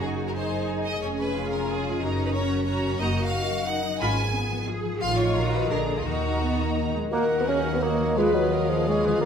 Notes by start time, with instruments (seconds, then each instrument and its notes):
Already playing: double bass section F#1, cello section F#4
0.01 harp F#2, viola section D#4 G#4, violin section G#4 G#5
0.17 harp G#4
0.28 violin section A#4
0.34 harp D#4, cello section D#4, viola section D#4 G#4, violin section C5 G#5
0.51 harp G#3
0.68 harp D#4
0.85 harp G#3, violin section D#5
1.01 double bass section F1, harp F2, cello section C#4, viola section C#4 G#4, violin section C#5 G#5
1.18 harp G#4, violin section B4
1.35 harp C#4, cello section F4
1.51 harp G#3, violin section A#4
1.68 harp C#4, viola section C#4 G#4, violin section G#4 G#5
1.85 harp G#3
2.01 double bass section F#1, harp F#2, viola section C#4 F#4, cello section D#4, violin section A#4 A#5
2.18 harp A#4
2.26 violin section B4
2.32 cello section C#4, viola section C#4 F#4, harp F#4, violin section C#5 A#5
2.51 harp F#3
2.66 viola section C#4 F#4, harp F#4, violin section C#5 A#5
2.83 harp F#3
2.99 double bass section F#1, harp F#2, viola section A#3 D#4, cello section F#4, violin section D#5 A#5
3.17 harp A#4
3.25 violin section F5
3.33 harp D#4
3.50 harp F#3
3.66 cello section D#4, harp D#4, violin section F#5
3.84 harp F#3
4.00 double bass section G#1, harp G#2, viola section G#3 F4, cello section C#4, violin section G#5 B5
4.17 harp B4
4.34 cello section B3, harp F4
4.51 harp F3
4.67 harp F4, cello section G#4
4.84 harp F3
5.01 double bass section A1, harp A2, viola section D#3 F4, cello section F4, violin section F5 C6
5.18 harp D#4 C5, violin section C#5
5.36 double bass section A#1, harp A#2, viola section D#3 F#4, violin section A#5
5.53 harp D#4 A#4, violin section B4
5.70 double bass section A#1, harp A#2, viola section D3 G#4, cello section D4, violin section A#4 A#5
5.88 harp D4 A#4
5.97 violin section F4
6.06 double bass section D#2, harp D#3, viola section D#3 F#4, cello section D#4, violin section F#4 A#5
6.23 harp F#4
6.41 viola section B3, harp A#4
6.59 viola section A#3, harp D#4
6.76 harp A#4
6.94 harp D#3 D#4, viola section G#3
6.99 harp F#3
7.03 harp D#4
7.08 french horn section F#4 A#4, harp A#4
7.12 double bass section D#2, bassoon A#3, cello section A#3, viola section D#4 F#4, violin section A#4 F#5, clarinet A#4, oboe F#5
7.40 bassoon B3, cello section B3
7.48 cello section C#4, bassoon C#4, violin section G#4, oboe F5
7.74 cello section B3, bassoon B3
7.82 bassoon A#3, cello section A#3, violin section F#4, clarinet C#5, oboe D#5
7.99 harp D#3
8.03 harp F3
8.08 harp F4
8.12 harp B4, violin section B4
8.17 cello section G#3, bassoon G#3, french horn section F4 B4, viola section F4 G#4, violin section B4 F5, clarinet B4, oboe D#5
8.34 bassoon F#3, cello section F#3
8.52 clarinet A#4, violin section A#4
8.69 cello section F3, bassoon F3, clarinet G#4
8.87 cello section G#3, bassoon G#3, violin section G#4, clarinet C#5
9.02 harp D3, clarinet B4
9.07 harp F3
9.11 harp F4
9.16 harp G#4
9.20 double bass section D2, cello section A#3, bassoon A#3, french horn section F4 G#4, violin section A#4, clarinet A#4, oboe D5